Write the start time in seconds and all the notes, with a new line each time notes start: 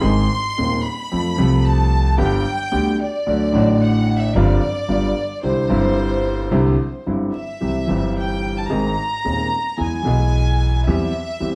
0.01 G#1 G#2 D#3 G#3 C4 G#4 C6
0.58 D#1 D#2 D#3 G#3 C4 G#4
0.86 B5
1.11 F2 F3 A3 C4 A4
1.36 C2 C3 F3 A3 C4
1.40 A4
1.66 A5
2.17 G1 G2 D3 G3 B3 G4 G5
2.72 D2 D3 G3 B3 G4
3.02 D5
3.26 D2 D3 F#3 A3 F#4
3.52 A1 A2 D3 F#3 A3
3.56 F#4
3.81 F#5
4.18 E5
4.34 G1 G2 D3 G3 C4 F4 D5
4.88 G1 G2 D3 G3 B3 F4
5.43 C2 C3 D3 G3 C4 E4 C5
5.68 G1 G2 D3 G3 C4
5.72 E4
6.51 C2 C3 D3 G3 C4 E4
7.06 G1 G2 D3 G3 C4 E4
7.35 E5
7.61 C2 C3 E3 G3 C4 G4
7.86 G1 G2 E3 G3 C4
7.91 G4
8.17 G5
8.59 A5
8.69 G#1 G#2 D#3 G#3 C4 G#4 A#5
9.24 D#1 D#2 D#3 G#3 C4 G#4
9.77 E2 E3 G#3 B3 G#4 G#5
10.03 B1 B2 E3 G#3 B3
10.07 B1 G#4
10.87 E2 E3 G3 C4 G4 E5
11.40 E2 E3 G3 C4 G4